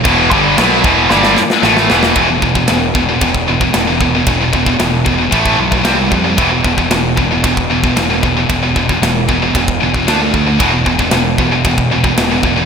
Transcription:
<<
  \new Staff \with { instrumentName = "Distorted electric guitar" } { \clef bass \time 4/4 \key e \minor \tempo 4 = 114 <e, b, e>8 <g, d g>8 <b, fis b>8 <e, b, e>8 <g, d g>8 r8 <a, e a>8 <e, b, e>8 | r1 | r1 | r1 |
r1 | r1 | }
  \new Staff \with { instrumentName = "Distorted electric guitar" } { \clef bass \time 4/4 \key e \minor <e, b, e>8 <g, d g>8 <b, fis b>8 <e, b, e>8 <g, d g>8 r8 <a, e a>8 <e, b, e>8 | <e, b, e>16 <e, b,>16 <e, b,>16 <e, b,>16 <e, b,>8 <e, b,>16 <e, b,>16 <e, b,>8 <e, b,>16 <e, b,>16 <e, b,>16 <e, b,>16 <e, b,>16 <e, b,>16 | <e, b,>16 <e, b,>16 <e, b,>16 <e, b,>16 <e, b,>8 <e, b,>16 <e, b,>16 <a, e a>8 <a, e>16 <a, e>16 <c g c'>16 <c g>16 <c g>16 <c g>16 | <e, b, e>16 <e, b,>16 <e, b,>16 <e, b,>16 <e, b,>8 <e, b,>16 <e, b,>16 <e, b,>8 <e, b,>16 <e, b,>16 <e, b,>16 <e, b,>16 <e, b,>16 <e, b,>16 |
<e, b,>16 <e, b,>16 <e, b,>16 <e, b,>16 <e, b,>8 <e, b,>16 <e, b,>16 <e, b,>8 <e, b,>16 <e, b,>16 <d a d'>16 <d a>16 <d a>16 <d a>16 | <e, b, e>16 <e, b,>16 <e, b,>16 <e, b,>16 <e, b,>8 <e, b,>16 <e, b,>16 <e, b,>8 <e, b,>16 <e, b,>16 <e, b,>16 <e, b,>16 <e, b,>16 <e, b,>16 | }
  \new Staff \with { instrumentName = "Distorted electric guitar" } { \clef bass \time 4/4 \key e \minor <e, b, e>8 <g, d g>8 <b, fis b>8 <e, b, e>8 <g, d g>8 r8 <a, e a>8 <e, b, e>8 | <e, b, e>16 <e, b,>16 <e, b,>16 <e, b,>16 <e, b,>8 <e, b,>16 <e, b,>16 <e, b,>8 <e, b,>16 <e, b,>16 <e, b,>16 <e, b,>16 <e, b,>16 <e, b,>16 | <e, b,>16 <e, b,>16 <e, b,>16 <e, b,>16 <e, b,>8 <e, b,>16 <e, b,>16 <a, e a>8 <a, e>16 <a, e>16 <c g c'>16 <c g>16 <c g>16 <c g>16 | <e, b, e>16 <e, b,>16 <e, b,>16 <e, b,>16 <e, b,>8 <e, b,>16 <e, b,>16 <e, b,>8 <e, b,>16 <e, b,>16 <e, b,>16 <e, b,>16 <e, b,>16 <e, b,>16 |
<e, b,>16 <e, b,>16 <e, b,>16 <e, b,>16 <e, b,>8 <e, b,>16 <e, b,>16 <e, b,>8 <e, b,>16 <e, b,>16 <d a d'>16 <d a>16 <d a>16 <d a>16 | <e, b, e>16 <e, b,>16 <e, b,>16 <e, b,>16 <e, b,>8 <e, b,>16 <e, b,>16 <e, b,>8 <e, b,>16 <e, b,>16 <e, b,>16 <e, b,>16 <e, b,>16 <e, b,>16 | }
  \new Staff \with { instrumentName = "Picked electric bass" } { \clef bass \time 4/4 \key e \minor e,,8 g,,8 b,,8 e,,8 g,,8 r8 a,,8 e,,8 | e,,8 e,,8 e,,8 e,,8 e,,4 e,,4 | e,,4 e,,4 a,,8 b,,8 c,8 f,8 | e,,8 e,,8 e,,8 e,,8 e,,4 e,,4 |
e,,4 e,,4 e,,8 e,,8 d,8 d,8 | e,,8 e,,8 e,,8 e,,8 e,,4 e,,4 | }
  \new DrumStaff \with { instrumentName = "Drums" } \drummode { \time 4/4 <cymc bd>8 bd8 <cymc sn>8 bd8 sn16 sn16 sn16 sn16 sn16 sn16 sn16 sn16 | <bd rb>8 bd16 bd16 <rb sn>8 bd8 <bd rb>16 bd8 bd16 <rb sn>8 bd8 | <bd rb>8 bd16 bd16 <rb sn>8 bd8 <bd rb>16 bd8 bd16 <rb sn>8 bd8 | <bd rb>8 bd16 bd16 <rb sn>8 bd8 <bd rb>16 bd8 bd16 <rb sn>8 bd8 |
<bd rb>8 bd16 bd16 <rb sn>8 bd8 <bd rb>16 bd8 bd16 <rb sn>8 bd8 | <bd rb>8 bd16 bd16 <rb sn>8 bd8 <bd rb>16 bd8 bd16 <rb sn>8 bd8 | }
>>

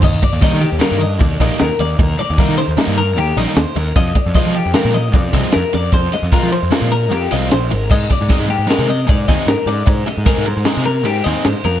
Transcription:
<<
  \new Staff \with { instrumentName = "Clean electric guitar" } { \time 5/4 \key ees \major \tempo 4 = 152 ees''8 d''8 ees''8 g'8 bes'8 ees''8 d''8 ees''8 bes'8 d''8 | bes'8 d''8 bes'8 c''8 bes'8 bes'8 g'8 ees''8 c''8 bes'8 | ees''8 d''8 ees''8 g'8 bes'8 ees''8 d''8 ees''8 bes'8 d''8 | c''8 ees''8 bes'8 c''8 bes'8 bes'8 g'8 ees''8 c''8 bes'8 |
ees''8 d''8 ees''8 g'8 bes'8 ees''8 d''8 ees''8 bes'8 d''8 | c''8 ees''8 bes'8 c''8 bes'8 bes'8 g'8 ees''8 c''8 bes'8 | }
  \new Staff \with { instrumentName = "Overdriven electric guitar" } { \time 5/4 \key ees \major r4 <ees g bes ees'>8 r8 <ees g bes ees'>8 r4 <ees g bes ees'>8 r4 | r4 <ees g bes ees'>8 r8 <ees g bes ees'>8 r4 <ees g bes ees'>8 r4 | r4 <f aes c' f'>8 r8 <f aes c' f'>8 r4 <f aes c' f'>8 r4 | r4 <f aes c' f'>8 r8 <f aes c' f'>8 r4 <f aes c' f'>8 r4 |
r4 <aes c' ees' aes'>8 r8 <aes c' ees' aes'>8 r4 <aes c' ees' aes'>8 r4 | r4 <aes c' ees' aes'>8 r8 <aes c' ees' aes'>8 r4 <aes c' ees' aes'>8 r4 | }
  \new Staff \with { instrumentName = "Picked electric bass" } { \clef bass \time 5/4 \key ees \major ees,8 r16 ees,16 r16 ees8 ees,16 r16 g,8. ees,8 bes,,16 r16 ees,16 r16 ees,8 | ees,8 r16 ees,16 r16 ees8 ees,16 r16 g,8. ees,8 bes,,16 r16 ees,16 r16 ees,8 | f,8 r16 f,16 r16 f8 f,16 r16 bes,8. f,8 c,16 r16 f,16 r16 f,8 | f,8 r16 f,16 r16 f8 f,16 r16 bes,8. f,8 c,8 bes,,8 aes,,8 |
aes,8 r16 aes,16 r16 aes,8 aes,16 r16 c8. aes,8 ees,16 r16 aes,16 r16 aes,8 | aes,8 r16 aes,16 r16 aes,8 aes,16 r16 c8. aes,8 ees,16 r16 aes,16 r16 f,8 | }
  \new DrumStaff \with { instrumentName = "Drums" } \drummode { \time 5/4 <cymc bd>8 <bd cymr>8 <bd cymr sn>8 cymr8 <cymr sn>8 cymr8 <bd cymr>8 <bd cymr>8 <cymr sn>8 <cymr sn>8 | <bd cymr>8 cymr8 <bd cymr>8 <cymr sn>8 <cymr sn>8 cymr8 cymr8 <cymr sn>8 <cymr sn>8 <cymr sn>8 | <bd cymr>8 <bd cymr>8 <bd cymr>8 cymr8 <cymr sn>8 <cymr sn>8 <bd cymr>8 <bd cymr sn>8 <cymr sn>8 <cymr sn>8 | <bd cymr>8 <cymr sn>8 <bd cymr>8 cymr8 <cymr sn>8 <cymr sn>8 cymr8 <cymr sn>8 <cymr sn>8 cymr8 |
<cymc bd>8 <bd cymr sn>8 <bd cymr sn>8 cymr8 <cymr sn>8 cymr8 <bd cymr>8 <bd cymr>8 <cymr sn>8 <cymr sn>8 | <bd cymr>8 <cymr sn>8 <bd cymr>8 cymr8 <cymr sn>8 cymr8 <cymr sn>8 cymr8 <cymr sn>8 cymr8 | }
>>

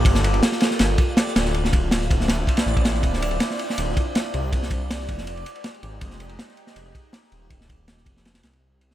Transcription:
<<
  \new Staff \with { instrumentName = "Synth texture" } { \time 4/4 \key d \minor \tempo 4 = 161 d''1~ | d''1~ | d''1~ | d''1~ |
d''1~ | d''1 | }
  \new Staff \with { instrumentName = "Analog synth pad" } { \time 4/4 \key d \minor <bes f' g' a'>1 | <c' d' e'>1~ | <c' d' e'>1~ | <c' d' e'>2 <aes ees' g'>2~ |
<aes ees' g'>1~ | <aes ees' g'>1 | }
  \new Staff \with { instrumentName = "Detuned saw bass" } { \clef bass \time 4/4 \key d \minor g,,4 r4 g,,8 r4 d,,8~ | d,,4. d,,4 r8 a,,4 | d,,4 r4 d,,8 r4 c,8~ | c,4. f,,4 r4 aes,,8 |
f,,4 r4 f,,8 r4 ees,,8~ | ees,,4. f,,4 c,4. | }
  \new DrumStaff \with { instrumentName = "Drums" } \drummode { \time 4/4 <bd cymr>16 sn16 cymr16 cymr16 <cymr sn>16 sn16 <cymr sn>16 sn16 <cymr sn>8 <bd cymr>8 <cymr sn>16 sn16 <cymr sn>16 sn16 | cymr16 sn16 <bd cymr>8 <cymr sn>16 sn16 <bd cymr>16 sn16 <cymr sn>8 <bd cymr>16 <cymr sn>16 sn16 <bd cymr>16 <cymr sn>16 sn16 | <bd cymr>16 sn16 cymr16 cymr16 <cymr sn>16 sn16 cymr16 sn16 cymr8 <bd cymr>8 <cymr sn>16 sn16 cymr8 | <bd cymr>16 sn16 <bd cymr>8 <cymr sn>16 sn16 <bd cymr>16 sn16 cymr16 cymr16 cymr16 cymr16 <cymr sn>16 cymr16 cymr8 |
<bd cymr>16 sn16 cymr16 cymr16 <cymr sn>16 sn16 cymr16 sn16 cymr8 <bd cymr>8 <cymr sn>16 sn16 cymr8 | <bd cymr>16 sn16 <bd cymr>8 <cymr sn>16 sn16 <bd cymr>16 sn16 <cymr sn>16 <cymr sn>16 <cymr sn>16 cymr16 r8 cymr16 sn16 | }
>>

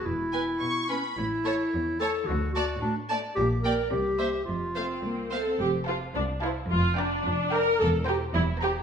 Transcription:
<<
  \new Staff \with { instrumentName = "Violin section" } { \time 2/4 \key d \lydian \tempo 4 = 109 r8 gis''8 cis'''8 b''8 | r8 a''8 r8 a''8 | r8 a''8 r8 a''8 | \key f \major r8 g''8 r8 e''8 |
r8 f''8 r8 f''8 | r8 a''8 r8 a''8 | r8 bes''8 r8 bes''8 | r8 bes''8 r8 bes''8 | }
  \new Staff \with { instrumentName = "Violin section" } { \time 2/4 \key d \lydian r8 b'8 r8 b'8 | r8 cis''8 r8 cis''8 | r8 d''8 r8 d''8 | \key f \major r8 d''8 r8 c''8 |
r8 c''8 r8 c''8 | r8 <c'' f''>8 r8 <c'' f''>8 | r8 <d'' g''>8 r8 <d'' g''>8 | r8 <c'' g''>8 r8 <c'' g''>8 | }
  \new Staff \with { instrumentName = "Clarinet" } { \time 2/4 \key d \lydian e'4. cis'8 | e'4. a'8 | fis'8 fis'8 d'8 r8 | \key f \major g'8 bes'8 g'4 |
f'4. r8 | r2 | r2 | r2 | }
  \new Staff \with { instrumentName = "Viola section" } { \time 2/4 \key d \lydian << { r2 | r2 | r2 | \key f \major r2 |
r8 c'4 a'8 | g'8 f'8 d'8 e'8 | f'8 d'4 bes'8 | a'8 g'8 e'8 g'8 | } \\ { r8 b8 r8 b8 | r8 a8 r8 a8 | r8 a8 r8 a8 | r8 bes8 r8 bes8 |
r8 a8 bes8 c'8 | r2 | r2 | r2 | } >> }
  \new Staff \with { instrumentName = "Cello section" } { \clef bass \time 2/4 \key d \lydian e,4 b,4 | a,4 e,4 | d4 a,4 | \key f \major bes,4 c4 |
f,4 c,4 | f,4 c,4 | f,4 f,4 | e,4 e,4 | }
  \new Staff \with { instrumentName = "Double bass section" } { \clef bass \time 2/4 \key d \lydian e,,4 r4 | a,,4 r4 | d,4 r4 | \key f \major bes,,4 c,4 |
f,,4 r4 | f,,4 c,4 | f,,4 f,,4 | e,,4 e,,4 | }
>>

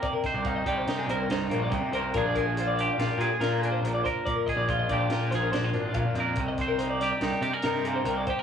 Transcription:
<<
  \new Staff \with { instrumentName = "Clean electric guitar" } { \time 5/4 \key c \minor \tempo 4 = 142 d''16 bes'16 ees''16 d''16 f''16 ees''16 d''16 c''16 bes'16 aes'16 c''16 bes'16 c''8 bes'16 d''16 ees''8 c''8 | bes'16 d''16 bes'16 aes'16 c''16 d''16 d''16 f''16 d''16 bes'16 g'16 aes'16 bes'8 aes'16 c''16 bes'16 d''16 c''8 | d''16 bes'16 ees''16 d''16 f''16 ees''16 d''16 c''16 bes'16 aes'16 c''16 bes'16 c''8 bes'16 d''16 f''8 d''8 | bes'16 ees''16 c''16 bes'16 c''16 d''16 d''16 ees''16 d''16 bes'16 g'16 aes'16 bes'8 aes'16 c''16 bes'16 d''16 c''8 | }
  \new Staff \with { instrumentName = "Clean electric guitar" } { \time 5/4 \key c \minor << { bes8 c''8 ees'8 g'8 ees'8 bes'8 ees'8 bes4 bes'8 | <f d' f' aes'>8 aes'8 f'8 g'8 f'8 aes'8 f'8 d'4 bes'8 | r8 aes'8 f'8 g'8 f'8 aes'8 d'16 f'16 d'4 bes'8 | r8 c''8 ees'8 g'8 ees'8 g'16 bes'16 ees'8 bes4 g'16 bes'16 | } \\ { c4. g4. g,4 c4 | bes,4. f4. bes,4 bes,4 | bes,4. f4. bes,4 bes,4 | c4. g4. g,4 c4 | } >> }
  \new Staff \with { instrumentName = "Picked electric bass" } { \clef bass \time 5/4 \key c \minor r8. c,8. c,8 c8 c,8 c,16 c,16 bes,,8 c,16 c16 c,8 | bes,,2 bes,,16 r16 bes,16 r16 bes,4 bes,,8 r8 | r8. bes,,8. bes,,8 bes,8 bes,,8 bes,,16 bes,,16 aes,,8 bes,,16 bes,16 f,8 | c,2 c,16 r16 c16 r16 c4 c,8 r8 | }
  \new DrumStaff \with { instrumentName = "Drums" } \drummode { \time 5/4 <hh bd>8 <hh bd sn>8 <hh bd>8 <hh bd>8 <hh sn>8 hh8 <hh sn>8 hh8 <hh bd>8 hh8 | <hh bd>8 <hh bd>8 hh8 hh8 <hh sn>8 hh8 <hh sn>8 hh8 hh8 <hh bd>8 | <hh bd>8 <hh bd>8 <hh bd>8 <hh bd>8 <hh sn>8 <hh sn>8 <hh sn>8 <hh sn>8 <hh bd>8 hh8 | <hh bd>8 <hh bd sn>8 hh8 <hh sn>8 <hh sn>8 hh8 <hh sn>8 hh8 hh8 <hh bd>8 | }
>>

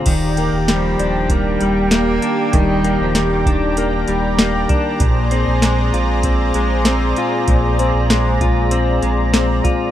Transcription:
<<
  \new Staff \with { instrumentName = "Analog synth pad" } { \time 4/4 \key ees \major \tempo 4 = 97 << { bes''1~ | bes''1~ | bes''1~ | bes''1 | } \\ { <g' d'' g''>1~ | <g' d'' g''>1 | <aes' c''>1~ | <aes' c''>1 | } >> }
  \new Staff \with { instrumentName = "Clean electric guitar" } { \time 4/4 \key ees \major ees8 bes8 g8 d'8 bes8 g8 bes8 d'8 | ees8 bes8 g8 d'8 bes8 g8 bes8 d'8 | bes,8 c'8 aes8 f'8 c'8 aes8 c'8 f'8 | bes,8 c'8 aes8 f'8 c'8 aes8 c'8 f'8 | }
  \new Staff \with { instrumentName = "Cello" } { \clef bass \time 4/4 \key ees \major r4 f4 g4 bes4 | g8. f16 ees4. r4. | r1 | r1 | }
  \new Staff \with { instrumentName = "Sub bass" } { \clef bass \time 4/4 \key ees \major ees,,8. ees,,8. ees,,4 ees,,4 r8 | ees,,8. ees,,8. ees,,4 ees,,4 r8 | bes,,8. bes,,8. bes,,4 bes,,4 r8 | bes,,8. bes,,8. bes,,4 bes,,4 r8 | }
  \new DrumStaff \with { instrumentName = "Drums" } \drummode { \time 4/4 <cymc hh bd>8 hh8 <hh sn>8 hh8 <hh bd>8 hh8 <hh sn>8 hh8 | <hh bd>8 hh8 <hh sn>8 <hh bd>8 hh8 hh8 <hh sn>8 <hh bd>8 | <hh bd>8 hh8 <hh sn>8 hh8 <hh bd>8 hh8 <hh sn>8 hh8 | <hh bd>8 hh8 <hh sn>8 <hh bd>8 hh8 hh8 <hh sn>8 <hh bd>8 | }
>>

